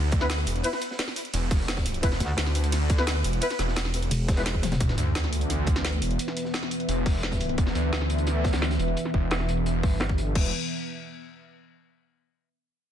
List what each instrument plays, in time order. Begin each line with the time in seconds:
Already playing: detuned saw bass D2
0.12 kick, closed hi-hat
0.21 brass ensemble B3 E4 B4, snare
0.30 snare, closed hi-hat, ride
0.38 closed hi-hat
0.47 detuned saw bass E1, closed hi-hat, open hi-hat
0.56 closed hi-hat
0.63 brass ensemble B3 E4 B4, closed hi-hat, ride
0.73 snare
0.81 closed hi-hat
0.91 snare
0.99 snare, closed hi-hat, ride
1.08 snare
1.16 closed hi-hat, open hi-hat
1.25 closed hi-hat
1.33 detuned saw bass E1, closed hi-hat, ride
1.51 kick, closed hi-hat, open hi-hat
1.68 snare, closed hi-hat, ride
1.77 kick, snare, closed hi-hat
1.86 closed hi-hat, open hi-hat
1.94 closed hi-hat
2.03 detuned saw bass E1, brass ensemble B3 E4 B4, kick, closed hi-hat, ride
2.12 snare
2.20 wobble bass D2, snare, closed hi-hat
2.37 detuned saw bass D2, snare, closed hi-hat, ride
2.46 snare
2.55 closed hi-hat, open hi-hat
2.64 closed hi-hat
2.72 snare, closed hi-hat, ride
2.90 kick, closed hi-hat
2.98 brass ensemble B3 E4 B4, snare
3.07 snare, closed hi-hat, ride
3.16 closed hi-hat
3.24 detuned saw bass E1, closed hi-hat, open hi-hat
3.33 closed hi-hat
3.41 brass ensemble B3 E4 B4, closed hi-hat, ride
3.50 snare, closed hi-hat
3.59 detuned saw bass E1, snare, closed hi-hat
3.68 snare
3.76 snare, closed hi-hat, ride
3.85 snare
3.94 snare, closed hi-hat, open hi-hat
4.03 closed hi-hat
4.11 wobble bass E1, closed hi-hat, ride
4.28 kick, snare, closed hi-hat
4.37 brass ensemble B3 E4 B4, snare, closed hi-hat
4.46 snare, closed hi-hat, ride
4.55 kick
4.63 snare, closed hi-hat, open hi-hat, high tom
4.72 snare, closed hi-hat, mid tom
4.80 detuned saw bass E1, analog synth pad E3 B3 B4 E5, kick, closed hi-hat, sub drop
4.89 snare
4.98 detuned saw bass D2, snare, closed hi-hat
5.15 detuned saw bass D2, snare, closed hi-hat
5.24 snare
5.33 closed hi-hat, open hi-hat
5.41 closed hi-hat
5.50 snare, closed hi-hat
5.67 kick, closed hi-hat
5.76 snare
5.85 snare, closed hi-hat
5.92 closed hi-hat
6.02 detuned saw bass E1, closed hi-hat, open hi-hat
6.11 closed hi-hat
6.19 closed hi-hat
6.28 snare
6.37 closed hi-hat
6.45 snare
6.54 snare, closed hi-hat
6.63 snare
6.71 closed hi-hat, open hi-hat
6.80 closed hi-hat
6.89 detuned saw bass E1, closed hi-hat
7.06 kick, closed hi-hat, open hi-hat
7.23 snare, closed hi-hat
7.31 kick, snare, closed hi-hat
7.40 closed hi-hat, open hi-hat
7.49 closed hi-hat
7.58 detuned saw bass E1, kick, closed hi-hat
7.67 snare
7.75 detuned saw bass D2, snare, closed hi-hat
7.93 detuned saw bass D2, snare, closed hi-hat
8.01 snare
8.10 closed hi-hat, open hi-hat
8.18 closed hi-hat
8.27 snare, closed hi-hat
8.44 kick, snare, closed hi-hat
8.53 snare, closed hi-hat
8.62 snare, closed hi-hat
8.71 snare, closed hi-hat
8.79 detuned saw bass E1, closed hi-hat, open hi-hat
8.88 closed hi-hat
8.97 closed hi-hat
9.05 snare
9.14 detuned saw bass E1, kick, closed hi-hat
9.31 detuned saw bass E1, snare, closed hi-hat
9.40 snare
9.49 detuned saw bass E1, closed hi-hat, open hi-hat
9.57 closed hi-hat
9.66 closed hi-hat
9.83 detuned saw bass G1, kick, closed hi-hat, open hi-hat
10.00 snare, closed hi-hat
10.09 kick
10.18 closed hi-hat, open hi-hat
10.27 closed hi-hat
10.35 detuned saw bass E1, kick, crash